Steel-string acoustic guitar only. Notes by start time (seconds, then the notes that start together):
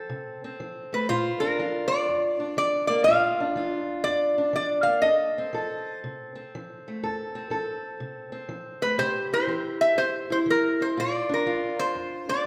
Already playing: C4 A4
0.09 C3
0.44 C4
0.60 F3
0.93 A3
1.09 A#2 F4
1.41 D4
1.59 F3 F4
2.09 F2
2.40 D4
2.57 F3
2.89 A#3
3.07 A#2 F4
3.40 D4
3.56 F3 F4
4.07 F2
4.38 D4
4.53 F3
4.87 A#3
5.02 F2 A4
5.38 C4
5.53 F3 A4
6.04 C3
6.35 C4
6.55 F3
6.88 A3
7.03 F2 A4
7.35 C4
7.50 F3 A4
8.00 C3
8.32 C4
8.49 F3
8.83 A3
8.98 C3 G4
9.33 E4
9.47 E3 G4
9.96 G2
10.30 E4
10.46 E3
10.80 C4
10.97 A#2 F4
11.29 D4
11.46 F3 F4
11.95 F2
12.29 D4